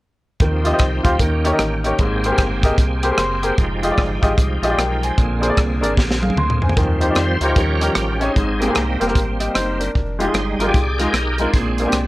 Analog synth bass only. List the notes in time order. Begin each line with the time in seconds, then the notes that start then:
0.40 D#2
0.79 C2
1.04 D2
1.19 D#2
1.59 A1
1.99 G#1
2.38 G1
2.78 C2
3.18 F#1
3.58 F1
3.98 G1
4.22 G#1
4.37 C2
4.62 A#1
4.78 B1
5.18 A#1
5.57 C2
5.82 G#1
5.97 A#1
6.36 D2
6.76 D#2
7.16 F2
7.41 D2
7.56 D#2
7.96 A1
8.36 G#1
8.76 C2
9.01 F1
9.15 G#1
9.55 F#1
9.95 F1
10.34 G1
10.58 G#1
10.74 C2
11.13 B1
11.54 A#1
11.93 C2